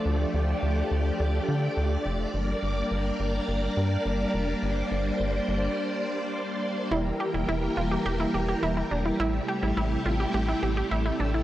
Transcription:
Already playing: F3 A3 D4 D5
0.06 D2 G4
0.34 D2
0.63 D2
0.91 D2
1.20 D2
1.49 D3
1.77 D2
2.06 F1
2.34 G1 G3 A#3 D4 A#4
2.63 G1
2.91 G1
3.20 G1
3.48 G1
3.77 G2
4.06 G1
4.34 F1
4.63 G1 C5
4.91 G1
5.20 G1
5.49 G1
6.91 E1 E3 G3 A#3 E4 G4 A#4
7.20 G4
7.34 E1 E4
7.48 E1 E4
7.77 E1 F4
7.91 G4
8.06 E1 G4
8.20 E4
8.34 E1 G4
8.48 G4
8.63 E1 E4
8.77 E4
8.91 E1 D4
9.05 E4
9.20 A1 C3 A3 E4 G4
9.48 G4
9.63 A1 E4
9.77 A1 E4
10.06 A1 F4
10.20 G4
10.34 A1 G4
10.48 E4
10.63 A1 G4
10.77 G4
10.91 A1 E4
11.05 E4
11.20 A1 D4
11.34 E4

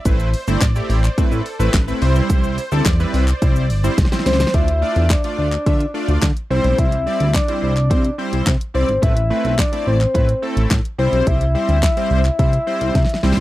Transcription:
0.05 A1 A3 C4 E4 B4, kick, closed hi-hat, shaker
0.19 shaker
0.34 open hi-hat, shaker
0.47 G1 A3 C4 E4 C5, shaker
0.61 A1, kick, snare, clap, closed hi-hat, shaker
0.76 A3 C4 E4 G4, shaker
0.90 A1, open hi-hat, shaker
1.04 clap, shaker
1.18 A2 A3 C4 E4 B4, kick, closed hi-hat, shaker
1.32 A2, shaker
1.46 open hi-hat, shaker
1.59 A1 A3 C4 E4 B4, shaker
1.74 A1, kick, snare, clap, closed hi-hat, shaker
1.88 A3 C4 E4 B4, shaker
2.02 C2 G3 C4 E4 C5, open hi-hat, shaker
2.16 shaker
2.30 C2, kick, closed hi-hat, shaker
2.44 shaker
2.58 open hi-hat, shaker
2.72 D2 G3 C4 E4 A4, shaker
2.86 E2, kick, snare, clap, closed hi-hat, shaker
3.00 G3 C4 E4 B4, shaker
3.14 C2, open hi-hat, shaker
3.28 clap, shaker
3.42 C2 G3 C4 E4 C5, kick, closed hi-hat, shaker
3.56 shaker
3.70 G1, open hi-hat, shaker
3.84 G3 C4 E4 C5, shaker
3.98 C2, kick, snare, closed hi-hat, shaker
4.05 snare
4.12 G3 C4 E4 C5, snare, shaker
4.19 snare
4.26 C#2 C5, snare, open hi-hat, shaker
4.33 snare
4.40 snare, shaker
4.47 snare
4.54 D2 A3 D4 F4 D5 E5, kick, closed hi-hat
4.68 closed hi-hat
4.82 A3 D4 F4 D5
4.96 E2, closed hi-hat
5.10 D5, kick, snare, clap, closed hi-hat
5.24 A3 D4 F4 D5, closed hi-hat
5.38 D2 D5
5.52 clap, closed hi-hat
5.66 D3 A3 D4 F4 E5, kick, closed hi-hat
5.80 closed hi-hat
5.94 A3 D4 F4 D5
6.08 D2, closed hi-hat
6.22 D3, kick, snare, clap, closed hi-hat
6.37 closed hi-hat
6.50 C2 G3 C4 E4 C5
6.64 B1, closed hi-hat
6.78 C2 E5, kick, closed hi-hat
6.92 closed hi-hat
7.06 G3 C4 E4 D5
7.20 D2, closed hi-hat
7.34 D5, kick, snare, clap, closed hi-hat
7.48 G3 C4 E4 C5, closed hi-hat
7.63 C2 D5
7.77 clap, closed hi-hat
7.90 C3 G3 C4 E4 C5, kick, closed hi-hat
8.05 closed hi-hat
8.18 G3 C4 E4 C5
8.33 C2, closed hi-hat
8.47 C3, kick, snare, clap, closed hi-hat
8.61 closed hi-hat
8.74 C2 G3 C4 E4 C5 D5
8.89 G#1, closed hi-hat
9.02 A1 A3 C4 E4 B4 E5, kick, closed hi-hat
9.17 closed hi-hat
9.30 A3 C4 E4 B4
9.45 B1, closed hi-hat
9.59 D5, kick, snare, clap, closed hi-hat
9.72 A3 C4 E4 D5, closed hi-hat
9.87 A1 C5
10.01 clap, closed hi-hat
10.14 A2 A3 C4 E4 B4, kick, closed hi-hat
10.29 closed hi-hat
10.42 A3 C4 E4 A4
10.57 A1, closed hi-hat
10.71 A2, kick, snare, clap, closed hi-hat
10.85 closed hi-hat
10.98 C2 G3 C4 E4 C5
11.13 B1, closed hi-hat
11.27 C2 E5, kick, closed hi-hat
11.41 closed hi-hat
11.55 G3 C4 E4 C5
11.69 D2, closed hi-hat
11.83 kick, snare, clap, closed hi-hat
11.97 G3 C4 E4 C5, closed hi-hat
12.11 C2
12.25 clap, closed hi-hat
12.39 C3 G3 C4 E4 C5 E5, kick, closed hi-hat
12.53 closed hi-hat
12.67 G3 C4 E4 C5
12.81 C2, closed hi-hat
12.95 C3, kick, snare, closed hi-hat
13.05 snare
13.09 closed hi-hat
13.14 snare
13.23 C2 G3 C4 E4 C5, snare
13.32 snare
13.37 C#2, closed hi-hat

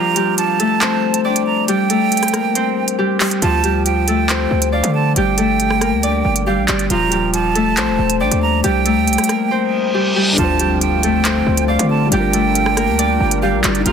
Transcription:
Already playing: F3 A#3 C4 D4 F4 G4 A#4 D5 A#5
0.16 G3 G4, closed hi-hat
0.38 A5, closed hi-hat
0.60 A3 A4, closed hi-hat
0.81 C4 C5, clap, closed hi-hat
1.14 closed hi-hat
1.25 D4 D5 G5
1.36 closed hi-hat
1.47 A#5
1.68 G3 G4 G5, closed hi-hat
1.90 A3 A4, closed hi-hat
2.12 closed hi-hat
2.17 closed hi-hat
2.23 cross-stick, closed hi-hat
2.28 closed hi-hat
2.33 A#3 A#4, cross-stick, closed hi-hat
2.55 C4 C5, closed hi-hat
2.88 closed hi-hat
2.99 G3 G4
3.20 G3 G4, clap, closed hi-hat, open hi-hat
3.31 closed hi-hat
3.42 D2 F3 F4 A5, closed hi-hat
3.64 G3 G4, closed hi-hat
3.86 G5, closed hi-hat
4.08 A3 A4, closed hi-hat
4.29 C4 C5, clap, closed hi-hat
4.51 D2
4.62 closed hi-hat
4.72 D4 D5 F5
4.83 D3, closed hi-hat
4.94 A5
5.16 G1 G3 G4 G5, closed hi-hat
5.38 A3 A4, closed hi-hat
5.60 closed hi-hat
5.71 cross-stick
5.81 A#3 A#4, cross-stick, closed hi-hat
5.92 D2
6.03 D4 D5, closed hi-hat
6.25 G1
6.36 closed hi-hat
6.47 G3 G4 F5
6.57 A#1
6.68 G1 G3 G4 D5, clap, closed hi-hat
6.79 closed hi-hat
6.90 D#1 F3 F4 A#5, closed hi-hat
7.12 G3 G4, closed hi-hat
7.34 A5, closed hi-hat
7.55 A3 A4, closed hi-hat
7.77 A#1 C4 C5, clap, closed hi-hat
7.88 D#1
7.99 D#1
8.10 closed hi-hat
8.20 A#1 D4 D5 G5
8.31 D#2, closed hi-hat
8.42 A#5
8.64 C2 G3 G4 G5, closed hi-hat
8.86 A3 A4, closed hi-hat
8.97 D#2
9.07 C2, closed hi-hat
9.13 closed hi-hat
9.18 cross-stick, closed hi-hat
9.24 closed hi-hat
9.29 A#3 A#4, cross-stick, closed hi-hat
9.51 C4 C5, reverse cymbal
9.94 G3 G4
10.16 G3 G4
10.32 D3 D4
10.38 D2 D3 F3 A3 C4 F4 A5, closed hi-hat, impact
10.43 C5
10.59 G3 G4, closed hi-hat
10.81 G5, closed hi-hat
11.03 A3 A4, closed hi-hat
11.25 C4 C5, clap, closed hi-hat
11.47 D2
11.57 closed hi-hat
11.68 D4 D5 F5
11.79 D3, closed hi-hat
11.90 A5
12.07 G3 D4
12.12 G1 G3 D4 F4 G4 A#4 G5, closed hi-hat
12.18 A#4
12.33 A3 A4, closed hi-hat
12.55 closed hi-hat
12.66 cross-stick
12.77 A#3 A#4, cross-stick, closed hi-hat
12.88 D2
12.99 D4 D5, closed hi-hat
13.20 G1
13.31 closed hi-hat
13.42 G3 G4 F5
13.53 A#1
13.61 G1 G3 D4 F4 G4 D5, clap, closed hi-hat
13.66 G3 A#4
13.75 closed hi-hat
13.80 D#3 A#3
13.86 D#1 D#3 F3 A#3 F4 G4 A#5, closed hi-hat

